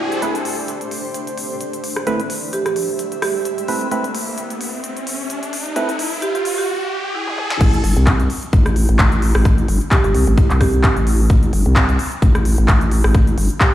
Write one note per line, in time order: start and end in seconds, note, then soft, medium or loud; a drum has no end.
0.00 6.68 A3 medium
0.00 6.68 D4 medium
0.00 0.12 E4 medium
0.00 6.68 G4 loud
0.00 6.68 C5 medium
0.00 1.09 D5 medium
0.00 riser medium
0.12 closed hi-hat soft
0.22 0.36 A3 medium
0.22 0.36 C4 medium
0.22 0.36 E4 medium
0.22 0.36 B4 loud
0.22 closed hi-hat medium
0.22 riser medium
0.35 closed hi-hat medium
0.45 open hi-hat loud
0.68 closed hi-hat medium
0.81 closed hi-hat medium
0.91 6.68 E5 medium
0.91 open hi-hat medium
1.14 closed hi-hat medium
1.27 closed hi-hat medium
1.38 open hi-hat loud
1.61 closed hi-hat medium
1.73 closed hi-hat medium
1.84 open hi-hat medium
1.96 cross-stick medium
1.96 closed hi-hat soft
2.07 2.21 A3 loud
2.07 2.21 C4 medium
2.07 2.21 E4 medium
2.07 2.21 B4 loud
2.07 closed hi-hat medium
2.20 closed hi-hat medium
2.30 open hi-hat loud
2.53 2.61 G4 medium
2.53 closed hi-hat medium
2.66 2.72 G4 medium
2.66 cross-stick medium
2.66 closed hi-hat medium
2.76 open hi-hat medium
2.99 closed hi-hat medium
3.12 closed hi-hat medium
3.22 3.58 G4 medium
3.22 cross-stick medium
3.22 open hi-hat loud
3.45 closed hi-hat medium
3.58 closed hi-hat medium
3.68 3.88 A3 medium
3.68 3.88 C4 medium
3.68 3.88 E4 medium
3.68 3.88 B4 medium
3.68 open hi-hat loud
3.81 closed hi-hat soft
3.91 4.05 A3 medium
3.91 4.05 C4 medium
3.91 4.05 E4 medium
3.91 4.05 B4 loud
3.91 closed hi-hat medium
4.04 closed hi-hat soft
4.15 open hi-hat loud
4.38 closed hi-hat medium
4.50 closed hi-hat medium
4.61 open hi-hat loud
4.84 closed hi-hat medium
4.97 closed hi-hat medium
5.07 open hi-hat loud
5.30 closed hi-hat medium
5.43 closed hi-hat medium
5.53 open hi-hat loud
5.66 closed hi-hat soft
5.76 5.90 A3 loud
5.76 5.90 C4 medium
5.76 5.90 E4 medium
5.76 5.90 B4 loud
5.76 closed hi-hat medium
5.89 closed hi-hat medium
5.99 open hi-hat loud
6.22 6.30 G4 medium
6.22 closed hi-hat medium
6.35 6.42 G4 medium
6.35 closed hi-hat soft
6.45 open hi-hat medium
6.58 6.69 G4 medium
7.15 7.50 E4 medium
7.27 high tom medium
7.38 mid tom medium
7.50 snare medium
7.61 7.82 A1 medium
7.61 kick loud
7.61 closed hi-hat medium
7.61 crash loud
7.73 closed hi-hat medium
7.84 7.95 G1 loud
7.84 open hi-hat loud
7.97 8.28 C2 loud
7.97 closed hi-hat soft
8.07 kick loud
8.07 clap loud
8.07 closed hi-hat medium
8.20 closed hi-hat medium
8.30 open hi-hat medium
8.43 closed hi-hat soft
8.53 8.87 A1 loud
8.53 kick loud
8.53 closed hi-hat medium
8.66 cross-stick medium
8.66 closed hi-hat medium
8.76 open hi-hat loud
8.89 8.98 A1 medium
8.89 closed hi-hat soft
8.99 9.33 A1 loud
8.99 kick loud
8.99 clap loud
8.99 closed hi-hat medium
9.12 closed hi-hat medium
9.22 open hi-hat medium
9.35 9.44 A1 loud
9.35 cross-stick medium
9.45 9.67 A1 loud
9.45 kick loud
9.45 cross-stick medium
9.45 closed hi-hat medium
9.58 closed hi-hat medium
9.68 9.79 G1 loud
9.68 open hi-hat loud
9.81 closed hi-hat soft
9.91 10.00 G4 medium
9.91 kick loud
9.91 clap loud
9.91 closed hi-hat medium
10.04 10.13 G1 medium
10.04 10.11 G4 medium
10.04 closed hi-hat medium
10.15 10.25 C2 loud
10.15 open hi-hat loud
10.27 10.48 A1 loud
10.27 closed hi-hat soft
10.38 kick loud
10.38 closed hi-hat medium
10.50 10.95 C2 loud
10.50 clap soft
10.50 closed hi-hat medium
10.61 10.97 G4 medium
10.61 kick medium
10.61 cross-stick medium
10.61 open hi-hat loud
10.73 closed hi-hat soft
10.84 kick loud
10.84 clap loud
10.84 closed hi-hat medium
10.97 11.28 A1 loud
10.97 closed hi-hat medium
11.07 open hi-hat loud
11.30 11.51 A1 loud
11.30 kick loud
11.30 closed hi-hat medium
11.43 closed hi-hat medium
11.53 11.64 G1 medium
11.53 open hi-hat loud
11.66 11.98 C2 loud
11.66 closed hi-hat soft
11.76 kick loud
11.76 clap loud
11.76 closed hi-hat medium
11.89 closed hi-hat soft
11.99 open hi-hat loud
12.12 closed hi-hat soft
12.22 12.56 A1 loud
12.22 kick loud
12.22 closed hi-hat medium
12.35 cross-stick medium
12.35 closed hi-hat medium
12.45 open hi-hat loud
12.58 12.67 A1 medium
12.58 closed hi-hat soft
12.68 13.02 A1 medium
12.68 kick loud
12.68 clap loud
12.68 closed hi-hat medium
12.81 closed hi-hat medium
12.91 open hi-hat loud
13.04 13.13 A1 loud
13.04 cross-stick medium
13.15 13.36 A1 loud
13.15 kick loud
13.15 cross-stick medium
13.15 closed hi-hat medium
13.27 closed hi-hat medium
13.38 13.48 G1 loud
13.38 open hi-hat loud
13.50 closed hi-hat soft
13.61 13.69 G4 medium
13.61 kick loud
13.61 clap loud
13.61 closed hi-hat medium